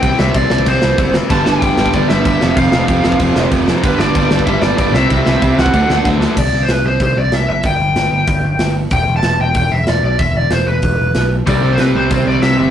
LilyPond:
<<
  \new Staff \with { instrumentName = "Lead electric guitar" } { \time 4/4 \key g \mixolydian \tempo 4 = 189 g''8 e''8 d''4 c''4. r8 | a''8 g''4. d''8 e''4. | f''2. r4 | b'8 d''4. e''8 d''8 d''8 e''8 |
e''4. fis''4. r4 | \key e \minor d''8. c''16 b'8 c''8 c''8 d''8 e''8 e''8 | g''2.~ g''8 r8 | g''8. a''16 a''8 g''8 g''8 e''8 d''8 d''8 |
e''8 d''8 c''8 b'2 r8 | d''8. c''16 b'8 c''8 c''8 d''8 e''8 e''8 | }
  \new Staff \with { instrumentName = "Distorted electric guitar" } { \clef bass \time 4/4 \key g \mixolydian <c g c'>4. <c g c'>2 r8 | <g, d g>2 <g, d g>4. <f, c f>8~ | <f, c f>4. <f, c f>2 r8 | <g, d g>2 <g, d g>4. <c g c'>8~ |
<c g c'>4. <c g c'>8 <d a d'>2 | \key e \minor r1 | r1 | r1 |
r1 | <c g c'>8 <c g c'>8 <c g c'>8 <c g c'>8 <c g c'>8 <c g c'>8 <c g c'>8 <c g c'>8 | }
  \new Staff \with { instrumentName = "Overdriven electric guitar" } { \clef bass \time 4/4 \key g \mixolydian r1 | <g, d g b d'>8 <g, d g b d'>8 <g, d g b d'>8 <g, d g b d'>8 <g, d g b d'>8 <g, d g b d'>8 <g, d g b d'>8 <f, c f a c'>8 | <f, c f a c'>8 <f, c f a c'>8 <f, c f a c'>8 <f, c f a c'>8 <f, c f a c'>8 <f, c f a c'>8 <f, c f a c'>8 <f, c f a c'>8 | <g, d g b d'>8 <g, d g b d'>8 <g, d g b d'>8 <g, d g b d'>8 <g, d g b d'>8 <g, d g b d'>8 <g, d g b d'>8 <c g c' e'>8 |
<c g c' e'>8 <c g c' e'>8 <c g c' e'>8 <c g c' e'>8 <d fis a d'>8 <d fis a d'>8 <d fis a d'>8 <d fis a d'>8 | \key e \minor r1 | r1 | r1 |
r1 | <c g c' e'>1 | }
  \new Staff \with { instrumentName = "Overdriven electric guitar" } { \clef bass \time 4/4 \key g \mixolydian <c g c'>8 <c g c'>8 <c g c'>8 <c g c'>8 <c g c'>8 <c g c'>8 <c g c'>8 <c g c'>8 | <g, d g>8 <g, d g>8 <g, d g>8 <g, d g>8 <g, d g>8 <g, d g>8 <g, d g>8 <f, c f>8 | <f, c f>8 <f, c f>8 <f, c f>8 <f, c f>8 <f, c f>8 <f, c f>8 <f, c f>8 <f, c f>8 | <g, d g>8 <g, d g>8 <g, d g>8 <g, d g>8 <g, d g>8 <g, d g>8 <g, d g>8 <c g c'>8 |
<c g c'>8 <c g c'>8 <c g c'>8 <c g c'>8 <d a d'>8 <d a d'>8 <d a d'>8 <d a d'>8 | \key e \minor r1 | r1 | r1 |
r1 | <c g c'>2 <c g c'>2 | }
  \new Staff \with { instrumentName = "Picked electric bass" } { \clef bass \time 4/4 \key g \mixolydian c,8 c,8 c,8 c,8 c,8 c,8 fis,,4 | g,,8 g,,8 g,,8 g,,8 g,,8 g,,8 g,,8 f,,8 | f,,8 f,,8 f,,8 f,,8 f,,8 f,,8 f,,4 | g,,8 g,,8 g,,8 g,,8 g,,8 g,,8 g,,8 c,8 |
c,8 c,8 c,8 c,8 d,8 d,8 d,4 | \key e \minor c,8 c,8 c,8 c,8 c,8 c,8 c,8 fis,,8 | g,,8 g,,8 g,,8 g,,8 g,,8 g,,8 g,,4 | e,,8 e,,8 e,,8 e,,8 e,,8 e,,8 e,,8 b,,8 |
e,,8 e,,8 e,,8 e,,8 e,,8 e,,8 b,,4 | c,8 c,8 c,8 c,8 c,8 c,8 c,8 g,,8 | }
  \new DrumStaff \with { instrumentName = "Drums" } \drummode { \time 4/4 <cymc bd>8 sn8 <cymc bd>8 sn16 bd16 <cymc bd>8 sn8 <cymc bd>8 sn8 | <cymc bd>8 sn8 <cymc bd>8 sn16 bd16 <cymc bd>8 sn8 <cymc bd>8 sn8 | <cymc bd>8 sn8 <cymc bd>8 sn16 bd16 <cymc bd>8 sn8 <cymc bd>8 sn8 | <cymc bd>8 sn8 <cymc bd>8 sn16 bd16 <cymc bd>8 sn8 <cymc bd>8 sn8 |
<cymc bd>8 sn8 <cymc bd>8 sn16 bd16 <cymc bd>8 sn8 <bd sn>8 sn8 | <cymc bd>4 <hho sn>4 <hho bd>4 <hho sn>4 | <hho bd>4 <hho sn>4 <hho bd>4 <hho sn>4 | <hho bd>4 <hho sn>4 <hho bd>4 <hho sn>4 |
<hho bd>4 <hho sn>4 <hho bd>4 <hho sn>4 | <hho bd>4 <hho sn>4 <hho bd>4 <hho sn>4 | }
>>